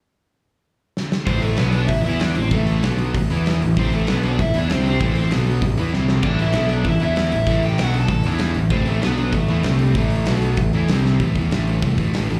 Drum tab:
CC |--------|--------|--------|--------|
HH |--------|oooooooo|oooooooo|oooooooo|
SD |------oo|--o---o-|--o---o-|--o---o-|
BD |--------|o---o---|o---o---|o---o---|

CC |--------|x-------|--------|--------|
HH |oooooo--|-ooooooo|oooooooo|oooooooo|
SD |--o---oo|--o---o-|--o---o-|--o---o-|
BD |o---o---|o---o---|o---o---|o---o---|

CC |--------|--------|
HH |ooooooo-|oooooooo|
SD |--o---oo|--o---o-|
BD |o---o---|oo--oo--|